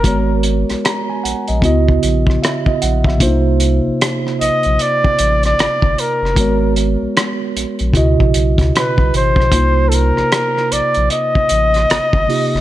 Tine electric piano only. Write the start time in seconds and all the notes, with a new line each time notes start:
0.03 G#3 B3 F#4 A#4
0.08 C#5
0.85 A#5
1.10 G#5
1.24 F#5
1.48 D#5
1.61 C#3 B3 E4 F#4
1.65 D#5
2.43 E5
2.67 D#5
2.82 F#5
3.07 E5
3.18 C3 A#3 D4 F4
3.22 C5
3.27 D#4
6.35 G#3 B3 F#4 A#4
6.40 C#5
7.93 B2 C#3 E4 F#4
7.97 D#5
9.50 C3 A#3 D#4 F4
9.55 C5
12.28 C3 A#3 D#4 F4 G4